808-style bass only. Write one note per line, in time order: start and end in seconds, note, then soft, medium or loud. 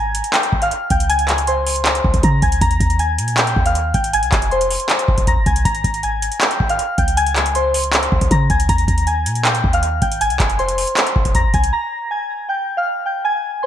0.00 0.22 G#1 loud
0.53 0.71 G#1 loud
0.91 2.01 C#2 loud
2.05 2.13 C#2 loud
2.14 2.23 C#2 loud
2.23 2.42 C#3 loud
2.43 2.61 C#2 loud
2.61 2.80 D#2 loud
2.80 3.20 D#2 loud
3.18 3.55 A#2 loud
3.56 3.93 D#2 loud
3.94 4.24 G#1 loud
4.23 4.32 C2 medium
4.32 4.78 F1 loud
5.08 5.29 F1 loud
5.27 5.38 F2 loud
5.37 5.46 F1 loud
5.46 5.65 C2 loud
5.65 5.84 G#1 loud
5.84 6.30 G#1 loud
6.60 6.78 G#1 loud
6.98 8.08 C#2 loud
8.12 8.21 C#2 loud
8.22 8.30 C#2 loud
8.31 8.49 C#3 loud
8.50 8.68 C#2 loud
8.69 8.87 D#2 loud
8.88 9.27 D#2 loud
9.26 9.62 A#2 loud
9.64 10.00 D#2 loud
10.02 10.32 G#1 loud
10.30 10.39 C2 medium
10.40 10.86 F1 loud
11.16 11.36 F1 loud
11.35 11.46 F2 loud
11.44 11.53 F1 loud
11.54 11.72 C2 loud